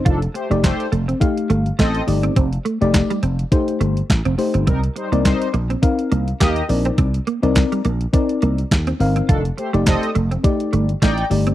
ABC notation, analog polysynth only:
X:1
M:4/4
L:1/16
Q:"Swing 16ths" 1/4=104
K:Fmix
V:1 name="Analog polysynth"
[E,DA] z [A,Gc] z [A,Gc]2 z6 [CAe]2 z2 | z16 | [G,EB] z [G,Ec] z [G,Ec]2 z6 [B,Ge]2 z2 | z16 |
[E,DA] z [A,Gc] z [CAe]2 z6 [Edg]2 z2 |]